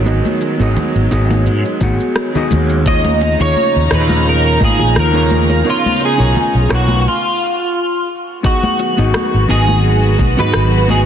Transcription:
Already playing: fretless electric bass G#1, string section D#3 F#3 G#3 B3
0.05 hollow-body jazz guitar B3 D#4 F#4 G#4 D#5, shaker
0.25 high conga, shaker
0.41 high bongo, shaker
0.59 fretless electric bass G#1, hollow-body jazz guitar B3 D#4 F#4 G#4 D#5, shaker
0.77 high conga, low conga, shaker
0.95 fretless electric bass G#1, shaker
1.11 fretless electric bass G#1, hollow-body jazz guitar B3 D#4 F#4 G#4 D#5, shaker
1.30 high conga, shaker
1.46 fretless electric bass G#2, shaker
1.65 high bongo, shaker
1.80 fretless electric bass G#1, hollow-body jazz guitar B3 D#4 F#4 G#4 F#5, kick, high conga, shaker
2.00 shaker
2.16 cross-stick, shaker
2.35 hollow-body jazz guitar B3 D#4 F#4 G#4 D#5, low conga, shaker
2.51 fretless electric bass D#2, high conga, shaker
2.70 shaker
2.86 string section C#3 F3 D#4 A#5, hollow-body jazz guitar A#3 D#4 F4 G#4 C#5, clean electric guitar D#5, kick, shaker
3.04 high conga, shaker
3.21 high bongo, shaker
3.39 fretless electric bass D#2, hollow-body jazz guitar A#3 D#4 F4 G#4 C#5, clean electric guitar C#5, shaker
3.56 high conga, shaker
3.75 fretless electric bass D#2, shaker
3.91 fretless electric bass D#2, hollow-body jazz guitar A#2 D#4 F4 G#4 C#5, clean electric guitar B4, cross-stick, shaker
4.09 high conga, shaker
4.26 clean electric guitar A#4, shaker
4.45 shaker
4.60 fretless electric bass G#2, hollow-body jazz guitar A#3 D#4 F4 G#4 F5, kick, high conga, shaker
4.64 clean electric guitar G#4
4.79 fretless electric bass A#1, high bongo, low conga, shaker
4.96 fretless electric bass D#2, clean electric guitar A#4, cross-stick, shaker
5.13 hollow-body jazz guitar A#3 D#4 F4 G#4 C#5, shaker
5.30 high conga, shaker
5.49 high bongo, shaker
5.64 string section C#3 B3 D#4, hollow-body jazz guitar B3 D#4 F4 A#4 C#5, shaker
5.70 clean electric guitar F4
5.84 high conga, shaker
6.00 high bongo, shaker
6.05 clean electric guitar G#4
6.17 fretless electric bass B1, hollow-body jazz guitar B3 D#4 F4 A#4 C#5, shaker
6.35 high conga, low conga, shaker
6.54 fretless electric bass B1, shaker
6.69 fretless electric bass B1, hollow-body jazz guitar B3 D#4 F4 A#4 C#5, cross-stick, shaker
6.75 clean electric guitar F#4
6.88 high conga, shaker
7.01 clean electric guitar F#4
7.08 clean electric guitar F4
8.43 string section D#3 F#3 G#3 B3 F#4, hollow-body jazz guitar B3 D#4 F#4 G#4 D#5, clean electric guitar F#4, kick, shaker
8.63 high conga, shaker
8.79 high bongo, shaker
8.97 fretless electric bass G#1, hollow-body jazz guitar B3 D#4 F#4 G#4 D#5, shaker
9.14 cross-stick, high conga, shaker
9.33 fretless electric bass G#1, shaker
9.48 fretless electric bass G#1, hollow-body jazz guitar B3 D#4 F#4 G#4 D#5, clean electric guitar G#4, shaker
9.68 high conga, shaker
9.84 shaker
10.03 shaker
10.19 fretless electric bass B1, kick, high conga, shaker
10.37 fretless electric bass G#2, hollow-body jazz guitar B3 D#4 F#4 G#4 D#5, clean electric guitar B4, high bongo, low conga, shaker
10.54 fretless electric bass G#1, cross-stick, shaker
10.73 shaker
10.88 hollow-body jazz guitar B3 D#4 F#4 G#4 D#5, clean electric guitar G#4, high conga, shaker

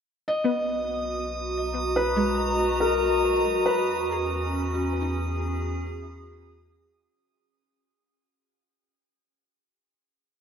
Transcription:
0.28 sub bass B1, felt piano D#5, synth texture D#6
0.40 ambient pad F#4
0.44 synth pluck B3
1.36 ambient pad A#5
1.83 ambient pad D#5
1.96 felt piano B4
2.16 synth pluck G#3
2.80 felt piano A#4
3.66 felt piano B4
3.71 sub bass E2, ambient pad C#4
4.11 synth pluck G#4
4.74 synth pluck F#4, ambient pad G#4
5.01 synth pluck D#4
5.85 synth pluck C#4
6.02 synth pluck E4

